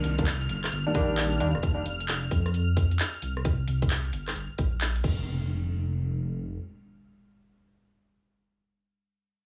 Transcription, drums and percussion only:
0.04 open hi-hat loud
0.18 kick loud
0.18 closed hi-hat medium
0.26 clap loud
0.26 closed hi-hat medium
0.41 open hi-hat medium
0.49 open hi-hat loud
0.64 cross-stick medium
0.64 clap medium
0.64 closed hi-hat soft
0.72 closed hi-hat medium
0.95 kick loud
0.95 open hi-hat loud
1.17 clap loud
1.17 closed hi-hat medium
1.32 closed hi-hat soft
1.40 open hi-hat loud
1.55 cross-stick medium
1.63 kick loud
1.63 closed hi-hat medium
1.86 open hi-hat loud
2.00 closed hi-hat medium
2.08 clap loud
2.08 closed hi-hat medium
2.31 kick loud
2.31 open hi-hat loud
2.46 cross-stick medium
2.46 closed hi-hat soft
2.54 closed hi-hat medium
2.77 kick loud
2.77 open hi-hat loud
2.91 open hi-hat medium
2.99 clap loud
2.99 closed hi-hat medium
3.14 closed hi-hat soft
3.22 open hi-hat loud
3.37 cross-stick medium
3.45 kick loud
3.45 closed hi-hat medium
3.68 open hi-hat medium
3.82 kick loud
3.82 closed hi-hat medium
3.90 clap loud
3.90 closed hi-hat medium
4.05 open hi-hat medium
4.13 open hi-hat loud
4.28 cross-stick medium
4.28 clap medium
4.28 closed hi-hat soft
4.36 closed hi-hat medium
4.58 kick loud
4.58 open hi-hat medium
4.81 clap loud
4.81 closed hi-hat medium
4.96 closed hi-hat soft
5.04 kick loud
5.04 crash medium

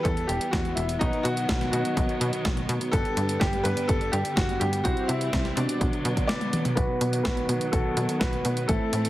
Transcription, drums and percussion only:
0.05 kick loud
0.05 closed hi-hat medium
0.17 closed hi-hat soft
0.29 closed hi-hat medium
0.41 closed hi-hat medium
0.53 kick loud
0.53 snare loud
0.53 closed hi-hat medium
0.65 closed hi-hat soft
0.77 closed hi-hat medium
0.89 closed hi-hat soft
1.01 kick loud
1.01 closed hi-hat medium
1.13 closed hi-hat soft
1.25 closed hi-hat medium
1.37 closed hi-hat soft
1.49 kick loud
1.49 snare loud
1.49 closed hi-hat medium
1.61 snare soft
1.61 closed hi-hat soft
1.73 closed hi-hat medium
1.85 closed hi-hat soft
1.97 kick loud
1.97 closed hi-hat medium
2.09 closed hi-hat soft
2.21 closed hi-hat medium
2.33 closed hi-hat medium
2.45 kick loud
2.45 snare loud
2.45 closed hi-hat medium
2.57 closed hi-hat soft
2.69 closed hi-hat medium
2.81 closed hi-hat soft
2.93 kick loud
2.93 closed hi-hat medium
3.05 closed hi-hat soft
3.17 closed hi-hat medium
3.29 closed hi-hat medium
3.41 kick loud
3.41 snare loud
3.41 closed hi-hat medium
3.53 closed hi-hat soft
3.65 closed hi-hat medium
3.77 closed hi-hat medium
3.89 kick loud
3.89 closed hi-hat medium
4.01 closed hi-hat soft
4.13 closed hi-hat medium
4.25 closed hi-hat medium
4.37 kick loud
4.37 snare loud
4.37 closed hi-hat medium
4.49 closed hi-hat soft
4.61 closed hi-hat medium
4.73 closed hi-hat medium
4.85 kick loud
4.85 closed hi-hat medium
4.97 closed hi-hat soft
5.09 closed hi-hat medium
5.21 closed hi-hat medium
5.33 kick loud
5.33 snare loud
5.33 closed hi-hat medium
5.45 snare soft
5.45 closed hi-hat soft
5.57 closed hi-hat medium
5.69 closed hi-hat medium
5.81 kick loud
5.81 closed hi-hat medium
5.93 closed hi-hat soft
6.05 closed hi-hat medium
6.17 kick medium
6.17 closed hi-hat medium
6.29 snare loud
6.29 closed hi-hat medium
6.29 high tom medium
6.41 closed hi-hat soft
6.41 high tom medium
6.53 closed hi-hat medium
6.53 mid tom medium
6.65 closed hi-hat medium
6.65 mid tom medium
6.77 kick loud
6.77 closed hi-hat medium
7.01 closed hi-hat medium
7.13 closed hi-hat medium
7.25 kick loud
7.25 snare loud
7.25 closed hi-hat medium
7.37 closed hi-hat soft
7.49 closed hi-hat medium
7.61 closed hi-hat medium
7.73 kick loud
7.73 closed hi-hat medium
7.97 closed hi-hat medium
8.09 closed hi-hat medium
8.21 kick loud
8.21 snare loud
8.21 closed hi-hat medium
8.33 closed hi-hat soft
8.45 closed hi-hat medium
8.57 closed hi-hat medium
8.69 kick loud
8.69 closed hi-hat medium
8.93 closed hi-hat medium
9.05 closed hi-hat medium

